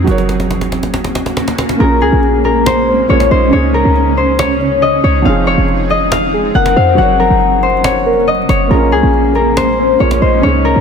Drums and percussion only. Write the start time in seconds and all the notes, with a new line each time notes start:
0.07 cajon slap
0.18 cajon slap
0.29 cajon slap
0.40 cajon slap
0.51 cajon slap
0.61 cajon slap
0.72 cajon slap
0.83 cajon slap
0.94 cajon slap
1.04 cajon slap
1.15 cajon slap
1.26 cajon slap
1.37 cajon slap
1.48 cajon slap
1.58 cajon slap
1.69 cajon slap
1.80 cajon slap
2.01 cajon slap
2.23 cajon slap
2.44 cajon slap
2.66 cajon slap
3.09 cajon slap
3.20 cajon slap
3.31 cajon slap
3.53 cajon slap
3.96 cajon slap
4.17 cajon slap
4.39 cajon slap
4.61 cajon slap
4.82 cajon slap
5.04 cajon slap
5.26 cajon slap
5.47 cajon slap
5.68 cajon slap
5.90 cajon slap
6.12 cajon slap
6.54 cajon slap
6.66 cajon slap
6.77 cajon slap
6.98 cajon slap
7.41 cajon slap
7.63 cajon slap
7.70 cajon slap
7.77 cajon slap
7.84 cajon slap
8.06 cajon slap
8.13 cajon slap
8.20 cajon slap
8.28 cajon slap
8.35 cajon slap
8.42 cajon slap
8.49 cajon slap
8.71 cajon slap
8.92 cajon slap
9.14 cajon slap
9.35 cajon slap
9.57 cajon slap
10.00 cajon slap
10.11 cajon slap
10.22 cajon slap
10.43 cajon slap